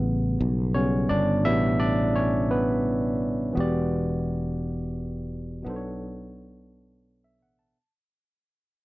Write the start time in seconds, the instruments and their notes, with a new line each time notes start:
Already playing: fretless electric bass A1, tine electric piano C#3 G3 B3
0.41 fretless electric bass B1
0.74 tine electric piano C#3 G3 B3 C#4 C#5
1.09 fretless electric bass G1, tine electric piano D4 D5
1.44 fretless electric bass A1, tine electric piano B2 G3 B3 E4 E5
1.80 tine electric piano D4 D5
2.16 tine electric piano C#4 C#5
2.51 tine electric piano B3 B4
3.53 tine electric piano E3 B3 F#4
3.57 fretless electric bass E1, tine electric piano G4 D5
5.62 fretless electric bass B1, tine electric piano B2 B3 D4
5.68 tine electric piano A4 C5
5.76 tine electric piano C#5
7.24 tine electric piano E5
7.42 fretless electric bass A1, tine electric piano F#5
7.59 tine electric piano A5